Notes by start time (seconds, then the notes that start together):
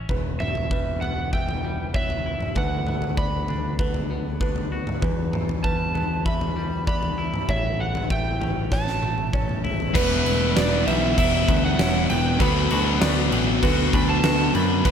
0.08 E1 E2 G3 B3 E4 B4 E5, kick, floor tom
0.40 B2 E5, mid tom
0.55 floor tom
0.71 G3 B4, kick
1.01 B3 F#5, floor tom
1.33 E3 E5 G5, kick
1.49 floor tom
1.64 G3
1.94 B3 C#5 E5, kick
2.10 floor tom
2.26 E4
2.40 mid tom
2.55 D2 D3 F#3 B3 D4 B4 D5 F#5, kick, floor tom
2.87 B3, mid tom
3.02 floor tom
3.17 B3 D5 B5, kick
3.48 D4, floor tom
3.79 D3 B4, kick
3.94 floor tom
4.11 B3
4.41 D4 B4, kick
4.56 floor tom
4.72 F#4
4.87 mid tom
5.02 E2 G3 E4 B4 E5, kick, floor tom
5.33 B2, mid tom
5.49 floor tom
5.64 G3 B4 A5, kick
5.95 B3, floor tom
6.25 E3 E5 B5, kick
6.41 floor tom
6.56 G3
6.87 B3 D5 B5, kick
7.03 floor tom
7.18 E4
7.34 mid tom
7.48 A1 A2 A3 C#4 C#5 E5, kick, floor tom
7.80 E3 F#5
7.95 floor tom
8.10 A3 E5 G5, kick
8.41 C#4, floor tom, mid tom
8.71 E3 C#5 A5, kick, snare
8.87 snare
9.02 A3, high tom
9.18 high tom
9.33 C#4 C#5, kick, mid tom
9.49 mid tom
9.64 E4, floor tom
9.80 floor tom
9.94 E1 E2 B2 E3 G3 B3 E4 B4 E5, kick, crash
10.25 E1 E4, crash
10.56 E1 B3 B4 D5, snare, crash
10.85 B1 E3 G3 B3 E4 E5, crash
11.18 E1 E4 E5, kick, crash
11.48 D2 B3, kick, crash
11.65 F#5
11.79 E1 E4 C#5, snare, crash
12.10 E1 B3 G5, crash
12.39 D2 B2 D3 F#3 B3 D4 F#4 B4 D5 B5, kick, crash
12.70 D2 F#4, crash
13.01 D2 D4 D5, snare, crash
13.31 A1 D3 F#3 B3 F#4, crash
13.62 D2 F#4 B4, kick, crash
13.93 D2 D4 B5, kick, crash
14.09 A5
14.24 D2 F#4 B4, snare, crash
14.55 F#2 D4 B5, crash
14.84 E1 E2 B2 E3 G3 B3 E4 B4 B5, kick, crash